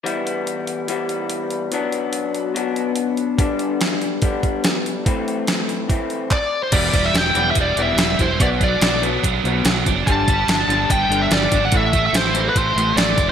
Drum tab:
CC |----------------|----------------|----------------|----------------|
HH |o-o-o-o-o-o-o-o-|o-o-o-o-o-o-o-o-|o-o-o-o-o-o-o-o-|o-o-o-o-o-o-----|
CP |----------------|----------------|----------------|------------x---|
SD |----------------|----------------|----o-------o---|----o-----------|
BD |----------------|----------------|o-------o-o-----|o-------o---o---|

CC |x---------------|----------------|----------------|----------------|
HH |x-x-x-x-x-x-x-x-|x-x-x-x-x-x-x-x-|x-x-x-x-x-x-x-x-|x-x-x-x-x-x-x-x-|
CP |----------------|----------------|----------------|----------------|
SD |----o-------oo--|----o-------o---|----o-------oo--|----o-------oo--|
BD |o-o-----o-----o-|o-o-----o-----o-|o-o-----o-----o-|o-o-----o-----o-|